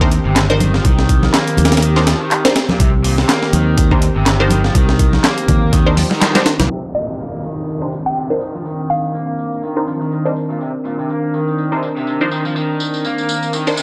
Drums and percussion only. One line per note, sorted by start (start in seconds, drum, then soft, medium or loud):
0.01 kick loud
0.12 closed hi-hat medium
0.36 snare loud
0.36 clap loud
0.36 closed hi-hat medium
0.60 closed hi-hat medium
0.60 high conga medium
0.74 snare soft
0.85 kick loud
0.85 closed hi-hat medium
0.99 snare medium
1.09 kick medium
1.09 closed hi-hat medium
1.23 snare soft
1.23 high conga medium
1.34 snare loud
1.34 clap loud
1.34 closed hi-hat medium
1.48 closed hi-hat soft
1.57 closed hi-hat medium
1.57 high conga medium
1.57 low conga medium
1.65 snare medium
1.65 closed hi-hat medium
1.72 snare medium
1.72 closed hi-hat medium
1.77 snare medium
1.77 closed hi-hat medium
1.82 closed hi-hat medium
1.96 snare soft
2.07 snare loud
2.07 closed hi-hat medium
2.31 clap loud
2.31 closed hi-hat medium
2.45 snare loud
2.45 closed hi-hat medium
2.56 snare loud
2.56 closed hi-hat medium
2.69 snare soft
2.69 high conga medium
2.80 kick loud
2.80 closed hi-hat medium
3.04 open hi-hat medium
3.18 snare medium
3.29 snare loud
3.29 clap medium
3.29 closed hi-hat medium
3.43 snare medium
3.53 closed hi-hat medium
3.53 high conga medium
3.78 kick loud
3.78 closed hi-hat medium
3.91 kick loud
4.02 closed hi-hat medium
4.26 snare loud
4.26 clap loud
4.26 closed hi-hat medium
4.50 closed hi-hat medium
4.50 high conga medium
4.64 snare soft
4.75 kick loud
4.75 closed hi-hat medium
4.89 snare medium
4.99 kick medium
4.99 closed hi-hat medium
5.13 snare soft
5.13 high conga medium
5.24 snare loud
5.24 clap loud
5.24 closed hi-hat medium
5.38 closed hi-hat soft
5.48 kick medium
5.48 closed hi-hat medium
5.48 high conga medium
5.48 low conga medium
5.73 kick loud
5.73 closed hi-hat medium
5.97 open hi-hat medium
5.97 high conga medium
6.11 snare medium
6.21 snare loud
6.21 clap loud
6.21 closed hi-hat medium
6.35 snare loud
6.35 closed hi-hat medium
6.46 snare loud
6.46 closed hi-hat medium
6.60 snare loud
6.60 closed hi-hat medium
6.60 high conga medium
6.70 tambourine soft
6.95 tambourine medium
7.08 tambourine soft
7.19 tambourine soft
7.43 tambourine medium
7.57 tambourine soft
7.68 tambourine soft
7.82 tambourine soft
7.92 tambourine medium
8.06 tambourine soft
8.16 tambourine soft
8.30 tambourine soft
8.41 tambourine medium
8.55 tambourine soft
8.65 tambourine soft
8.90 tambourine medium
9.03 tambourine soft
9.14 tambourine soft
9.39 tambourine medium
9.52 tambourine soft
9.63 tambourine soft
9.77 tambourine soft
9.87 tambourine medium
10.01 tambourine soft
10.12 tambourine soft
10.26 tambourine soft
10.36 tambourine medium
10.50 tambourine soft
10.61 tambourine soft
10.85 tambourine medium
10.99 tambourine soft
11.10 tambourine soft
11.34 tambourine medium
11.48 tambourine soft
11.58 tambourine soft
11.72 tambourine soft
11.83 tambourine medium
11.96 tambourine soft
12.07 tambourine soft
12.21 tambourine soft
12.31 tambourine medium
12.45 tambourine soft
12.56 tambourine soft
12.80 tambourine medium
12.94 tambourine soft
13.05 tambourine soft
13.18 tambourine soft
13.29 tambourine medium
13.43 tambourine soft
13.53 tambourine soft
13.67 tambourine soft
13.77 tambourine medium